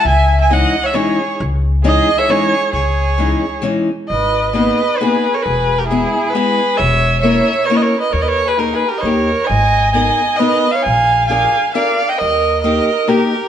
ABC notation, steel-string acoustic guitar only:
X:1
M:3/4
L:1/8
Q:"Swing" 1/4=134
K:C#m
V:1 name="Steel-string acoustic guitar"
z2 [E,G,CD] z [E,G,CD] z | z2 [E,G,CD] z [E,G,CD] z | z2 [E,G,CD] z [E,G,CD] z | [K:G#m] z2 [A,B,DG] z [A,B,DG] z |
z2 [G,B,EG] z [G,B,EG] z | z2 [A,CEA] z [A,CEA] z | z2 [A,DGA] z [A,D=GA] z | z2 [B,DGA] z [B,DGA] z |
z2 [=D^EGA] z [DEGA] z | z2 [A,D=GA] z [A,DGA] z |]